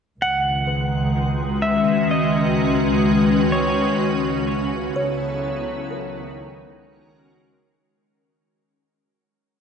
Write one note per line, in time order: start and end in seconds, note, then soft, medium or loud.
0.19 2.05 C#2 medium
0.19 4.00 D#3 medium
0.19 1.62 F#5 medium
0.36 4.01 G#3 medium
0.67 2.54 B4 medium
1.03 4.75 C#4 medium
1.03 4.75 F#4 medium
1.03 4.76 B4 medium
1.62 2.11 E5 medium
2.11 3.96 C#2 medium
2.11 3.49 D#5 medium
3.52 3.97 C#5 medium
4.01 5.86 C#2 medium
4.01 5.91 C#3 medium
4.96 6.35 C#5 medium
5.91 7.77 C#2 medium
5.91 7.82 D#3 medium
5.91 8.25 A#4 soft